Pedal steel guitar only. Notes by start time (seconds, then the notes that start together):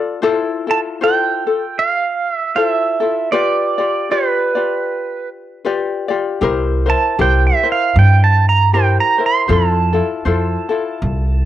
0.71 A5
1.04 G5
1.79 F5
2.34 E5
2.56 F5
2.67 E5
3.32 D5
4.12 B4
6.90 A5
7.21 G5
7.47 E5
7.72 F5
7.99 G5
8.24 A5
8.49 A#5
8.74 G5
9.00 A#5
9.26 C6
9.53 A5